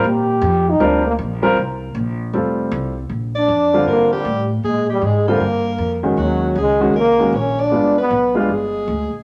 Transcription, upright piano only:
X:1
M:4/4
L:1/8
Q:"Swing" 1/4=156
K:Eblyd
V:1 name="Upright piano"
z4 [G,CFB] z2 [G,CFB] | z4 [G,CFA]3 z | z3 [D,G,CF]3 z2 | z3 [D,G,CF] z3 [E,_A,_D_G]- |
[E,_A,_D_G]2 z [E,A,DG] z [E,A,DG] z2 | [_A,=B,DF] z2 [A,B,DF] z4 |]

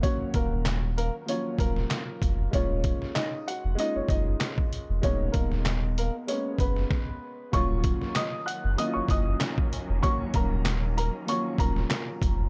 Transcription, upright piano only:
X:1
M:4/4
L:1/16
Q:"Swing 16ths" 1/4=96
K:Ebm
V:1 name="Upright piano"
[Dd]2 [B,B]2 z2 [B,B] z [Dd]2 [B,B]6 | [Dd]4 [Ee]2 [Gg]2 [Ee] [Dd] [Ee]2 z4 | [Dd]2 [B,B]2 z2 [B,B] z [Dd]2 [Cc]6 | [dd']4 [ee']2 [gg']2 [ee'] [dd'] [ee']2 z4 |
[dd']2 [Bb]2 z2 [Bb] z [dd']2 [Bb]6 |]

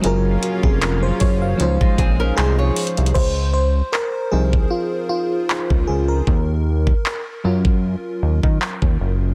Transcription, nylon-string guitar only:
X:1
M:4/4
L:1/16
Q:"Swing 16ths" 1/4=77
K:Db
V:1 name="Nylon-string guitar"
z8 z [A,F] [CA] [DB] [Ec] [Fd]3 | z16 | z16 |]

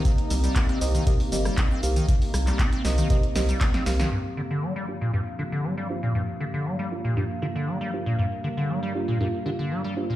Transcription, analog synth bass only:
X:1
M:4/4
L:1/8
Q:1/4=118
K:Gm
V:1 name="Analog synth bass" clef=bass
z C,, z C,, z G,,, z C,, | z C,, z C,, z C,, z C,, | z8 | z8 |
z8 |]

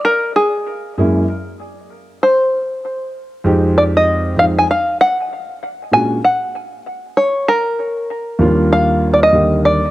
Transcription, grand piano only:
X:1
M:4/4
L:1/8
Q:"Swing 16ths" 1/4=97
K:Eb
V:1 name="Grand piano"
z3 [_G,,A,B,_D_F] z4 | z3 [F,,A,CEG]3 [F,,A,CEA] z | z3 [B,,A,^CD^F] z4 | z3 [E,,F,G,B,DF]3 [E,,D,G,B,G] z |]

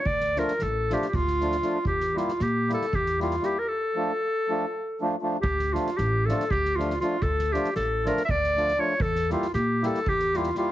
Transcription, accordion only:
X:1
M:7/8
L:1/8
Q:1/4=117
K:Dm
V:1 name="Accordion"
z [F,A,DF] z [F,A,DF] z [F,A,DF] [F,A,DF] | z [G,B,EG] z [G,B,EG] z [G,B,EG] [G,B,EG] | z [F,A,DF] z [F,A,DF] z [F,A,DF] [F,A,DF] | z [F,A,DF] z [F,A,DF] z [F,A,DF] [F,A,DF] |
z [F,A,DF] z [F,A,DF] z [F,A,DF] [F,A,DF] | z [G,B,EG] z [G,B,EG] z [G,B,EG] [G,B,EG] |]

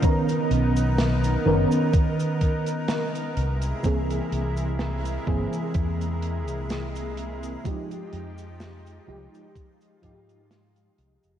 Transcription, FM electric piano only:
X:1
M:4/4
L:1/8
Q:"Swing 16ths" 1/4=63
K:Cphr
V:1 name="FM electric piano"
[E,_CDB]3 [E,CDB] z4 | [=E,B,CA]3 [E,B,CA] z4 | [F,A,EG]3 [F,A,EG] z [F,A,EG]3 |]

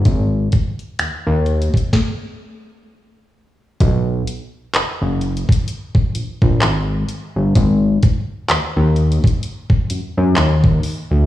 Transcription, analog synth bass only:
X:1
M:4/4
L:1/16
Q:"Swing 16ths" 1/4=64
K:B
V:1 name="Analog synth bass" clef=bass
G,,,2 z2 D,, D,,2 z8 z | B,,,2 z2 F,,, F,,,2 z3 A,,, A,,, G,,,2 z =G,,, | G,,,2 z2 D,, D,,2 z3 F,, F,, D,,2 z =D,, |]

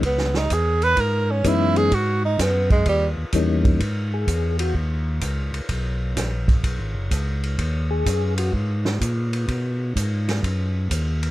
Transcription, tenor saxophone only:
X:1
M:4/4
L:1/8
Q:"Swing" 1/4=127
K:G#m
V:1 name="Tenor saxophone"
B, D G B A C E G | F D B, G, =G, z3 | z8 | z8 |
z8 | z8 |]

